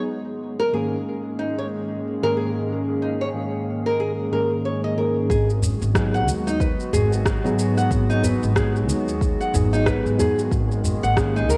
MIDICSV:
0, 0, Header, 1, 7, 480
1, 0, Start_track
1, 0, Key_signature, 5, "minor"
1, 0, Tempo, 652174
1, 60, Time_signature, 4, 2, 24, 8
1, 8519, End_track
2, 0, Start_track
2, 0, Title_t, "Nylon-string guitar"
2, 0, Program_c, 0, 24
2, 439, Note_on_c, 0, 70, 88
2, 529, Note_off_c, 0, 70, 0
2, 541, Note_on_c, 0, 68, 70
2, 621, Note_off_c, 0, 68, 0
2, 1022, Note_on_c, 0, 63, 71
2, 1148, Note_off_c, 0, 63, 0
2, 1166, Note_on_c, 0, 73, 66
2, 1220, Note_off_c, 0, 73, 0
2, 1644, Note_on_c, 0, 70, 96
2, 1732, Note_off_c, 0, 70, 0
2, 1743, Note_on_c, 0, 68, 71
2, 1822, Note_off_c, 0, 68, 0
2, 2224, Note_on_c, 0, 63, 65
2, 2349, Note_off_c, 0, 63, 0
2, 2364, Note_on_c, 0, 73, 69
2, 2419, Note_off_c, 0, 73, 0
2, 2842, Note_on_c, 0, 70, 87
2, 2931, Note_off_c, 0, 70, 0
2, 2943, Note_on_c, 0, 68, 72
2, 3022, Note_off_c, 0, 68, 0
2, 3185, Note_on_c, 0, 70, 70
2, 3316, Note_off_c, 0, 70, 0
2, 3424, Note_on_c, 0, 73, 71
2, 3549, Note_off_c, 0, 73, 0
2, 3562, Note_on_c, 0, 75, 69
2, 3651, Note_off_c, 0, 75, 0
2, 3663, Note_on_c, 0, 70, 72
2, 3795, Note_off_c, 0, 70, 0
2, 3899, Note_on_c, 0, 68, 78
2, 4033, Note_off_c, 0, 68, 0
2, 4520, Note_on_c, 0, 78, 80
2, 4615, Note_off_c, 0, 78, 0
2, 4761, Note_on_c, 0, 63, 70
2, 4855, Note_off_c, 0, 63, 0
2, 4861, Note_on_c, 0, 71, 78
2, 5091, Note_off_c, 0, 71, 0
2, 5101, Note_on_c, 0, 68, 79
2, 5234, Note_off_c, 0, 68, 0
2, 5721, Note_on_c, 0, 78, 76
2, 5815, Note_off_c, 0, 78, 0
2, 5959, Note_on_c, 0, 63, 78
2, 6054, Note_off_c, 0, 63, 0
2, 6061, Note_on_c, 0, 71, 69
2, 6291, Note_off_c, 0, 71, 0
2, 6298, Note_on_c, 0, 68, 84
2, 6433, Note_off_c, 0, 68, 0
2, 6922, Note_on_c, 0, 78, 70
2, 7016, Note_off_c, 0, 78, 0
2, 7160, Note_on_c, 0, 63, 80
2, 7255, Note_off_c, 0, 63, 0
2, 7258, Note_on_c, 0, 71, 79
2, 7489, Note_off_c, 0, 71, 0
2, 7502, Note_on_c, 0, 68, 77
2, 7635, Note_off_c, 0, 68, 0
2, 8121, Note_on_c, 0, 78, 74
2, 8215, Note_off_c, 0, 78, 0
2, 8362, Note_on_c, 0, 63, 77
2, 8456, Note_off_c, 0, 63, 0
2, 8460, Note_on_c, 0, 70, 77
2, 8519, Note_off_c, 0, 70, 0
2, 8519, End_track
3, 0, Start_track
3, 0, Title_t, "Synth keys"
3, 0, Program_c, 1, 88
3, 536, Note_on_c, 1, 44, 89
3, 540, Note_on_c, 1, 51, 74
3, 543, Note_on_c, 1, 58, 81
3, 546, Note_on_c, 1, 61, 75
3, 550, Note_on_c, 1, 68, 97
3, 698, Note_off_c, 1, 44, 0
3, 699, Note_off_c, 1, 51, 0
3, 701, Note_off_c, 1, 58, 0
3, 703, Note_off_c, 1, 61, 0
3, 704, Note_off_c, 1, 68, 0
3, 1635, Note_on_c, 1, 44, 82
3, 1639, Note_on_c, 1, 51, 84
3, 1645, Note_on_c, 1, 58, 75
3, 1646, Note_on_c, 1, 61, 82
3, 1653, Note_on_c, 1, 68, 98
3, 1713, Note_off_c, 1, 44, 0
3, 1716, Note_off_c, 1, 51, 0
3, 1718, Note_off_c, 1, 58, 0
3, 1719, Note_off_c, 1, 61, 0
3, 1722, Note_off_c, 1, 68, 0
3, 1729, Note_on_c, 1, 44, 82
3, 1737, Note_on_c, 1, 51, 74
3, 1744, Note_on_c, 1, 58, 73
3, 1752, Note_on_c, 1, 61, 76
3, 1758, Note_on_c, 1, 68, 86
3, 2431, Note_off_c, 1, 44, 0
3, 2435, Note_off_c, 1, 51, 0
3, 2438, Note_off_c, 1, 58, 0
3, 2442, Note_off_c, 1, 61, 0
3, 2445, Note_off_c, 1, 68, 0
3, 2452, Note_on_c, 1, 44, 68
3, 2458, Note_on_c, 1, 51, 62
3, 2465, Note_on_c, 1, 58, 64
3, 2475, Note_on_c, 1, 61, 66
3, 2480, Note_on_c, 1, 68, 76
3, 3152, Note_off_c, 1, 44, 0
3, 3155, Note_off_c, 1, 51, 0
3, 3159, Note_off_c, 1, 58, 0
3, 3164, Note_off_c, 1, 61, 0
3, 3166, Note_off_c, 1, 68, 0
3, 3174, Note_on_c, 1, 44, 77
3, 3179, Note_on_c, 1, 51, 68
3, 3181, Note_on_c, 1, 58, 67
3, 3188, Note_on_c, 1, 61, 72
3, 3190, Note_on_c, 1, 68, 86
3, 3633, Note_off_c, 1, 44, 0
3, 3636, Note_off_c, 1, 51, 0
3, 3637, Note_off_c, 1, 58, 0
3, 3641, Note_off_c, 1, 61, 0
3, 3641, Note_off_c, 1, 68, 0
3, 3655, Note_on_c, 1, 44, 78
3, 3659, Note_on_c, 1, 51, 73
3, 3663, Note_on_c, 1, 58, 70
3, 3665, Note_on_c, 1, 61, 74
3, 3669, Note_on_c, 1, 68, 87
3, 3886, Note_off_c, 1, 44, 0
3, 3888, Note_off_c, 1, 51, 0
3, 3890, Note_off_c, 1, 58, 0
3, 3891, Note_off_c, 1, 61, 0
3, 3893, Note_off_c, 1, 68, 0
3, 4373, Note_on_c, 1, 54, 90
3, 4379, Note_on_c, 1, 59, 82
3, 4383, Note_on_c, 1, 63, 92
3, 4389, Note_on_c, 1, 68, 106
3, 4536, Note_off_c, 1, 54, 0
3, 4539, Note_off_c, 1, 59, 0
3, 4541, Note_off_c, 1, 63, 0
3, 4544, Note_off_c, 1, 68, 0
3, 5476, Note_on_c, 1, 54, 98
3, 5482, Note_on_c, 1, 59, 90
3, 5483, Note_on_c, 1, 63, 91
3, 5488, Note_on_c, 1, 68, 108
3, 5554, Note_off_c, 1, 54, 0
3, 5557, Note_off_c, 1, 59, 0
3, 5557, Note_off_c, 1, 63, 0
3, 5560, Note_off_c, 1, 68, 0
3, 5568, Note_on_c, 1, 54, 89
3, 5577, Note_on_c, 1, 59, 83
3, 5585, Note_on_c, 1, 63, 80
3, 5597, Note_on_c, 1, 68, 97
3, 6270, Note_off_c, 1, 54, 0
3, 6275, Note_off_c, 1, 59, 0
3, 6279, Note_off_c, 1, 63, 0
3, 6285, Note_off_c, 1, 68, 0
3, 6287, Note_on_c, 1, 54, 74
3, 6297, Note_on_c, 1, 59, 70
3, 6305, Note_on_c, 1, 63, 70
3, 6317, Note_on_c, 1, 68, 83
3, 6990, Note_off_c, 1, 54, 0
3, 6995, Note_off_c, 1, 59, 0
3, 6999, Note_off_c, 1, 63, 0
3, 7005, Note_off_c, 1, 68, 0
3, 7018, Note_on_c, 1, 54, 83
3, 7022, Note_on_c, 1, 59, 76
3, 7027, Note_on_c, 1, 63, 72
3, 7031, Note_on_c, 1, 68, 92
3, 7476, Note_off_c, 1, 54, 0
3, 7477, Note_off_c, 1, 59, 0
3, 7480, Note_off_c, 1, 63, 0
3, 7482, Note_off_c, 1, 68, 0
3, 7489, Note_on_c, 1, 54, 85
3, 7495, Note_on_c, 1, 59, 75
3, 7501, Note_on_c, 1, 63, 78
3, 7503, Note_on_c, 1, 68, 97
3, 7723, Note_off_c, 1, 54, 0
3, 7726, Note_off_c, 1, 59, 0
3, 7729, Note_off_c, 1, 63, 0
3, 7730, Note_off_c, 1, 68, 0
3, 8212, Note_on_c, 1, 51, 94
3, 8216, Note_on_c, 1, 58, 88
3, 8222, Note_on_c, 1, 61, 86
3, 8227, Note_on_c, 1, 68, 105
3, 8375, Note_off_c, 1, 51, 0
3, 8378, Note_off_c, 1, 58, 0
3, 8381, Note_off_c, 1, 61, 0
3, 8383, Note_off_c, 1, 68, 0
3, 8519, End_track
4, 0, Start_track
4, 0, Title_t, "Ambient pad"
4, 0, Program_c, 2, 92
4, 62, Note_on_c, 2, 44, 77
4, 62, Note_on_c, 2, 51, 67
4, 62, Note_on_c, 2, 58, 73
4, 62, Note_on_c, 2, 61, 77
4, 63, Note_on_c, 2, 56, 70
4, 63, Note_on_c, 2, 68, 85
4, 3872, Note_off_c, 2, 44, 0
4, 3872, Note_off_c, 2, 51, 0
4, 3872, Note_off_c, 2, 56, 0
4, 3872, Note_off_c, 2, 58, 0
4, 3872, Note_off_c, 2, 61, 0
4, 3872, Note_off_c, 2, 68, 0
4, 3900, Note_on_c, 2, 59, 79
4, 3901, Note_on_c, 2, 56, 76
4, 3902, Note_on_c, 2, 51, 81
4, 3903, Note_on_c, 2, 54, 75
4, 3905, Note_on_c, 2, 66, 91
4, 7711, Note_off_c, 2, 59, 0
4, 7712, Note_off_c, 2, 54, 0
4, 7713, Note_off_c, 2, 66, 0
4, 7737, Note_on_c, 2, 58, 73
4, 7737, Note_on_c, 2, 68, 95
4, 7738, Note_on_c, 2, 61, 75
4, 8519, Note_off_c, 2, 51, 0
4, 8519, Note_off_c, 2, 56, 0
4, 8519, Note_off_c, 2, 58, 0
4, 8519, Note_off_c, 2, 61, 0
4, 8519, Note_off_c, 2, 68, 0
4, 8519, End_track
5, 0, Start_track
5, 0, Title_t, "Upright bass"
5, 0, Program_c, 3, 32
5, 3899, Note_on_c, 3, 32, 97
5, 4225, Note_off_c, 3, 32, 0
5, 4280, Note_on_c, 3, 32, 85
5, 4617, Note_off_c, 3, 32, 0
5, 4617, Note_on_c, 3, 39, 95
5, 4944, Note_off_c, 3, 39, 0
5, 5101, Note_on_c, 3, 32, 91
5, 5426, Note_off_c, 3, 32, 0
5, 5479, Note_on_c, 3, 44, 85
5, 5780, Note_off_c, 3, 44, 0
5, 5819, Note_on_c, 3, 32, 92
5, 6145, Note_off_c, 3, 32, 0
5, 6202, Note_on_c, 3, 32, 83
5, 6541, Note_off_c, 3, 32, 0
5, 6541, Note_on_c, 3, 39, 94
5, 6866, Note_off_c, 3, 39, 0
5, 7021, Note_on_c, 3, 32, 95
5, 7346, Note_off_c, 3, 32, 0
5, 7401, Note_on_c, 3, 44, 83
5, 7701, Note_off_c, 3, 44, 0
5, 7740, Note_on_c, 3, 32, 89
5, 8066, Note_off_c, 3, 32, 0
5, 8120, Note_on_c, 3, 32, 84
5, 8462, Note_off_c, 3, 32, 0
5, 8462, Note_on_c, 3, 39, 99
5, 8519, Note_off_c, 3, 39, 0
5, 8519, End_track
6, 0, Start_track
6, 0, Title_t, "Udu"
6, 4138, Note_on_c, 9, 64, 84
6, 4211, Note_off_c, 9, 64, 0
6, 5101, Note_on_c, 9, 64, 99
6, 5174, Note_off_c, 9, 64, 0
6, 6062, Note_on_c, 9, 64, 84
6, 6135, Note_off_c, 9, 64, 0
6, 7024, Note_on_c, 9, 64, 107
6, 7098, Note_off_c, 9, 64, 0
6, 7507, Note_on_c, 9, 64, 87
6, 7581, Note_off_c, 9, 64, 0
6, 7979, Note_on_c, 9, 64, 85
6, 8053, Note_off_c, 9, 64, 0
6, 8519, End_track
7, 0, Start_track
7, 0, Title_t, "Drums"
7, 3899, Note_on_c, 9, 36, 101
7, 3907, Note_on_c, 9, 82, 44
7, 3973, Note_off_c, 9, 36, 0
7, 3980, Note_off_c, 9, 82, 0
7, 4047, Note_on_c, 9, 82, 23
7, 4121, Note_off_c, 9, 82, 0
7, 4144, Note_on_c, 9, 82, 81
7, 4217, Note_off_c, 9, 82, 0
7, 4285, Note_on_c, 9, 82, 30
7, 4358, Note_off_c, 9, 82, 0
7, 4379, Note_on_c, 9, 36, 102
7, 4380, Note_on_c, 9, 37, 113
7, 4385, Note_on_c, 9, 82, 47
7, 4453, Note_off_c, 9, 36, 0
7, 4454, Note_off_c, 9, 37, 0
7, 4459, Note_off_c, 9, 82, 0
7, 4527, Note_on_c, 9, 82, 21
7, 4600, Note_off_c, 9, 82, 0
7, 4625, Note_on_c, 9, 82, 73
7, 4698, Note_off_c, 9, 82, 0
7, 4767, Note_on_c, 9, 82, 31
7, 4840, Note_off_c, 9, 82, 0
7, 4859, Note_on_c, 9, 36, 114
7, 4865, Note_on_c, 9, 82, 45
7, 4932, Note_off_c, 9, 36, 0
7, 4939, Note_off_c, 9, 82, 0
7, 5005, Note_on_c, 9, 82, 21
7, 5078, Note_off_c, 9, 82, 0
7, 5107, Note_on_c, 9, 82, 83
7, 5181, Note_off_c, 9, 82, 0
7, 5246, Note_on_c, 9, 82, 32
7, 5319, Note_off_c, 9, 82, 0
7, 5339, Note_on_c, 9, 36, 108
7, 5340, Note_on_c, 9, 37, 106
7, 5346, Note_on_c, 9, 82, 45
7, 5413, Note_off_c, 9, 36, 0
7, 5414, Note_off_c, 9, 37, 0
7, 5419, Note_off_c, 9, 82, 0
7, 5489, Note_on_c, 9, 82, 21
7, 5563, Note_off_c, 9, 82, 0
7, 5585, Note_on_c, 9, 82, 78
7, 5658, Note_off_c, 9, 82, 0
7, 5725, Note_on_c, 9, 82, 31
7, 5799, Note_off_c, 9, 82, 0
7, 5820, Note_on_c, 9, 36, 109
7, 5824, Note_on_c, 9, 82, 45
7, 5894, Note_off_c, 9, 36, 0
7, 5897, Note_off_c, 9, 82, 0
7, 5966, Note_on_c, 9, 82, 25
7, 6039, Note_off_c, 9, 82, 0
7, 6065, Note_on_c, 9, 82, 84
7, 6139, Note_off_c, 9, 82, 0
7, 6205, Note_on_c, 9, 82, 33
7, 6278, Note_off_c, 9, 82, 0
7, 6300, Note_on_c, 9, 36, 110
7, 6300, Note_on_c, 9, 37, 107
7, 6305, Note_on_c, 9, 82, 48
7, 6373, Note_off_c, 9, 37, 0
7, 6374, Note_off_c, 9, 36, 0
7, 6379, Note_off_c, 9, 82, 0
7, 6446, Note_on_c, 9, 82, 21
7, 6520, Note_off_c, 9, 82, 0
7, 6545, Note_on_c, 9, 82, 81
7, 6618, Note_off_c, 9, 82, 0
7, 6686, Note_on_c, 9, 82, 33
7, 6760, Note_off_c, 9, 82, 0
7, 6780, Note_on_c, 9, 36, 117
7, 6786, Note_on_c, 9, 82, 44
7, 6854, Note_off_c, 9, 36, 0
7, 6860, Note_off_c, 9, 82, 0
7, 6926, Note_on_c, 9, 82, 22
7, 6999, Note_off_c, 9, 82, 0
7, 7025, Note_on_c, 9, 82, 82
7, 7099, Note_off_c, 9, 82, 0
7, 7165, Note_on_c, 9, 82, 36
7, 7239, Note_off_c, 9, 82, 0
7, 7259, Note_on_c, 9, 37, 110
7, 7260, Note_on_c, 9, 36, 112
7, 7264, Note_on_c, 9, 82, 46
7, 7332, Note_off_c, 9, 37, 0
7, 7333, Note_off_c, 9, 36, 0
7, 7338, Note_off_c, 9, 82, 0
7, 7407, Note_on_c, 9, 82, 22
7, 7481, Note_off_c, 9, 82, 0
7, 7505, Note_on_c, 9, 82, 82
7, 7578, Note_off_c, 9, 82, 0
7, 7646, Note_on_c, 9, 82, 35
7, 7720, Note_off_c, 9, 82, 0
7, 7739, Note_on_c, 9, 36, 107
7, 7744, Note_on_c, 9, 82, 43
7, 7813, Note_off_c, 9, 36, 0
7, 7817, Note_off_c, 9, 82, 0
7, 7886, Note_on_c, 9, 82, 24
7, 7960, Note_off_c, 9, 82, 0
7, 7984, Note_on_c, 9, 82, 80
7, 8058, Note_off_c, 9, 82, 0
7, 8127, Note_on_c, 9, 82, 33
7, 8200, Note_off_c, 9, 82, 0
7, 8219, Note_on_c, 9, 36, 113
7, 8221, Note_on_c, 9, 37, 112
7, 8226, Note_on_c, 9, 82, 49
7, 8293, Note_off_c, 9, 36, 0
7, 8294, Note_off_c, 9, 37, 0
7, 8299, Note_off_c, 9, 82, 0
7, 8367, Note_on_c, 9, 82, 22
7, 8441, Note_off_c, 9, 82, 0
7, 8464, Note_on_c, 9, 82, 83
7, 8519, Note_off_c, 9, 82, 0
7, 8519, End_track
0, 0, End_of_file